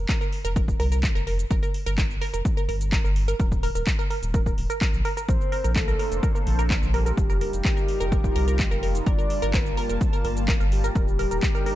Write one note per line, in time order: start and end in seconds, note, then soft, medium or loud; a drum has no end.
0.09 0.13 A#4 loud
0.09 kick loud
0.09 clap loud
0.09 closed hi-hat soft
0.09 cabasa medium
0.21 0.27 A#4 medium
0.21 cabasa soft
0.33 open hi-hat loud
0.45 0.74 F1 medium
0.45 0.48 A#4 loud
0.45 closed hi-hat medium
0.45 cabasa medium
0.56 0.62 A#4 medium
0.56 kick loud
0.56 closed hi-hat medium
0.56 cabasa medium
0.68 kick medium
0.68 cabasa soft
0.80 1.09 C2 medium
0.80 0.84 A#4 loud
0.80 open hi-hat loud
0.92 0.98 A#4 medium
0.92 closed hi-hat medium
0.92 cabasa medium
1.03 kick loud
1.03 clap loud
1.03 closed hi-hat soft
1.03 cabasa medium
1.15 1.45 F1 loud
1.15 1.19 A#4 medium
1.15 cabasa soft
1.27 1.33 A#4 medium
1.27 open hi-hat loud
1.39 closed hi-hat medium
1.39 cabasa medium
1.51 1.59 G1 loud
1.51 1.54 A#4 loud
1.51 kick loud
1.51 closed hi-hat medium
1.51 cabasa medium
1.63 1.69 A#4 medium
1.63 cabasa soft
1.74 open hi-hat loud
1.86 2.16 G1 medium
1.86 1.90 A#4 loud
1.86 closed hi-hat medium
1.86 cabasa medium
1.98 2.04 A#4 medium
1.98 kick loud
1.98 clap loud
1.98 closed hi-hat soft
1.98 cabasa medium
2.10 cabasa soft
2.21 2.25 A#4 loud
2.21 open hi-hat loud
2.34 2.41 F1 medium
2.34 2.40 A#4 medium
2.34 closed hi-hat medium
2.34 cabasa medium
2.45 kick loud
2.45 closed hi-hat medium
2.45 cabasa medium
2.57 2.61 A#4 loud
2.57 cabasa soft
2.69 2.98 G1 loud
2.69 2.75 A#4 medium
2.69 open hi-hat medium
2.81 closed hi-hat medium
2.81 cabasa medium
2.92 2.96 A#4 loud
2.92 kick loud
2.92 clap loud
2.92 closed hi-hat medium
2.92 cabasa medium
3.04 3.34 G1 loud
3.04 3.10 A#4 medium
3.04 cabasa soft
3.16 open hi-hat loud
3.28 3.32 A#4 loud
3.28 closed hi-hat medium
3.28 cabasa medium
3.40 3.69 D#1 medium
3.40 3.46 A#4 medium
3.40 kick loud
3.40 closed hi-hat medium
3.40 cabasa medium
3.52 kick medium
3.52 cabasa soft
3.63 3.67 A#4 loud
3.63 open hi-hat loud
3.75 3.83 D#1 medium
3.75 3.81 A#4 medium
3.75 closed hi-hat medium
3.75 cabasa medium
3.87 kick loud
3.87 clap loud
3.87 closed hi-hat medium
3.87 cabasa medium
3.99 4.03 A#4 loud
3.99 cabasa soft
4.10 4.17 A#4 medium
4.10 open hi-hat loud
4.23 4.52 D#1 medium
4.23 closed hi-hat medium
4.23 cabasa medium
4.34 4.38 A#4 loud
4.34 kick loud
4.34 closed hi-hat medium
4.34 cabasa medium
4.46 4.52 A#4 medium
4.46 kick medium
4.46 cabasa soft
4.58 4.66 D#1 loud
4.58 open hi-hat loud
4.70 4.73 A#4 loud
4.70 closed hi-hat medium
4.70 cabasa medium
4.81 4.88 A#4 medium
4.81 kick loud
4.81 clap loud
4.81 closed hi-hat medium
4.81 cabasa medium
4.93 5.01 A#1 loud
4.93 cabasa soft
5.05 5.09 A#4 loud
5.05 open hi-hat medium
5.17 5.23 A#4 medium
5.17 closed hi-hat medium
5.17 cabasa medium
5.28 5.37 A#1 medium
5.28 7.16 A#3 medium
5.28 7.16 D4 medium
5.28 7.16 A4 medium
5.28 5.35 A#4 medium
5.28 7.16 C5 medium
5.28 5.71 C5 loud
5.28 kick loud
5.28 closed hi-hat medium
5.28 cabasa medium
5.41 cabasa soft
5.52 5.56 A#4 loud
5.52 open hi-hat loud
5.64 5.94 A#1 loud
5.64 5.70 A#4 medium
5.64 closed hi-hat medium
5.64 cabasa medium
5.76 6.18 A4 loud
5.76 kick loud
5.76 clap loud
5.76 closed hi-hat medium
5.76 cabasa medium
5.88 5.92 A#4 loud
5.88 cabasa soft
5.99 6.06 A#4 medium
5.99 open hi-hat loud
6.12 6.19 F1 medium
6.12 closed hi-hat medium
6.12 cabasa medium
6.23 6.27 A#4 loud
6.23 kick loud
6.23 closed hi-hat medium
6.23 cabasa medium
6.35 6.41 A#4 medium
6.35 cabasa soft
6.47 6.76 A#1 loud
6.47 open hi-hat loud
6.59 6.62 A#4 loud
6.59 closed hi-hat medium
6.59 cabasa medium
6.70 6.77 A#4 medium
6.70 kick loud
6.70 clap loud
6.70 closed hi-hat medium
6.70 cabasa medium
6.82 7.12 A#1 loud
6.82 cabasa soft
6.94 8.97 G4 loud
6.94 6.98 A#4 loud
6.94 open hi-hat loud
7.06 7.12 A#4 medium
7.06 closed hi-hat medium
7.06 cabasa medium
7.17 7.47 F1 medium
7.17 11.75 G3 medium
7.17 9.05 D#4 medium
7.17 10.92 F4 medium
7.17 9.05 A#4 medium
7.17 kick loud
7.17 closed hi-hat medium
7.17 cabasa medium
7.30 7.33 A#4 loud
7.30 cabasa soft
7.41 7.48 A#4 medium
7.41 open hi-hat loud
7.53 7.61 F1 medium
7.53 closed hi-hat medium
7.53 cabasa medium
7.65 7.69 A#4 loud
7.65 kick loud
7.65 clap loud
7.65 closed hi-hat soft
7.65 cabasa medium
7.77 7.83 A#4 medium
7.77 cabasa soft
7.88 open hi-hat loud
8.00 8.30 F1 loud
8.00 8.04 A#4 loud
8.00 closed hi-hat medium
8.00 cabasa medium
8.12 8.18 A#4 medium
8.12 kick loud
8.12 closed hi-hat medium
8.12 cabasa medium
8.24 kick medium
8.24 cabasa soft
8.36 8.65 C2 medium
8.36 8.39 A#4 loud
8.36 open hi-hat loud
8.48 8.54 A#4 medium
8.48 closed hi-hat medium
8.48 cabasa medium
8.59 kick loud
8.59 clap loud
8.59 closed hi-hat medium
8.59 cabasa medium
8.71 9.01 F1 medium
8.71 8.75 A#4 medium
8.71 cabasa soft
8.83 8.89 A#4 medium
8.83 open hi-hat loud
8.95 closed hi-hat medium
8.95 cabasa medium
9.06 9.15 G1 loud
9.06 10.94 A#3 medium
9.06 9.10 A#4 medium
9.06 9.55 D5 loud
9.06 10.94 A5 medium
9.06 kick loud
9.06 closed hi-hat medium
9.06 cabasa medium
9.19 9.25 A#4 medium
9.19 cabasa soft
9.30 open hi-hat loud
9.42 9.72 G1 loud
9.42 9.46 A#4 loud
9.42 closed hi-hat medium
9.42 cabasa medium
9.54 9.60 A#4 medium
9.54 9.96 A#4 medium
9.54 kick loud
9.54 clap loud
9.54 closed hi-hat soft
9.54 cabasa medium
9.66 cabasa soft
9.77 9.81 A#4 loud
9.77 open hi-hat loud
9.89 9.97 F1 medium
9.89 9.96 A#4 medium
9.89 closed hi-hat medium
9.89 cabasa medium
10.01 kick loud
10.01 closed hi-hat medium
10.01 cabasa medium
10.13 10.17 A#4 loud
10.13 cabasa soft
10.25 10.54 G1 loud
10.25 10.31 A#4 medium
10.25 open hi-hat loud
10.37 closed hi-hat medium
10.37 cabasa medium
10.48 10.52 A#4 loud
10.48 kick loud
10.48 clap loud
10.48 closed hi-hat medium
10.48 cabasa medium
10.60 10.90 G1 loud
10.60 10.66 A#4 medium
10.60 cabasa soft
10.72 11.75 G4 loud
10.72 open hi-hat loud
10.84 10.88 A#4 loud
10.84 closed hi-hat medium
10.84 cabasa medium
10.95 11.25 D#1 medium
10.95 11.75 D4 medium
10.95 11.75 D#4 medium
10.95 11.02 A#4 medium
10.95 11.75 A#4 medium
10.95 kick loud
10.95 closed hi-hat soft
10.95 cabasa medium
11.08 cabasa soft
11.19 11.23 A#4 loud
11.19 open hi-hat loud
11.31 11.39 D#1 medium
11.31 11.37 A#4 medium
11.31 closed hi-hat medium
11.31 cabasa medium
11.43 kick loud
11.43 clap loud
11.43 closed hi-hat soft
11.43 cabasa medium
11.55 11.58 A#4 loud
11.55 cabasa soft
11.66 11.73 A#4 medium
11.66 open hi-hat loud